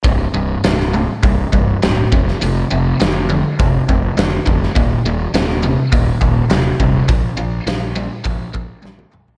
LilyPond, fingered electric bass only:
\new Staff \with { instrumentName = "Fingered electric bass" } { \clef bass \time 4/4 \key c \dorian \tempo 4 = 103 c,,8 c,,8 c,,4 c,,8 c,,8 c,,8 f,,8 | f,,8 f,,8 f,,4 f,,8 f,,8 f,,8 f,,8 | ees,,8 ees,,8 ees,,4 ees,,8 ees,,8 ees,,8 ees,,8 | bes,,8 bes,,8 bes,,4 bes,,8 bes,,8 bes,,8 bes,,8 | }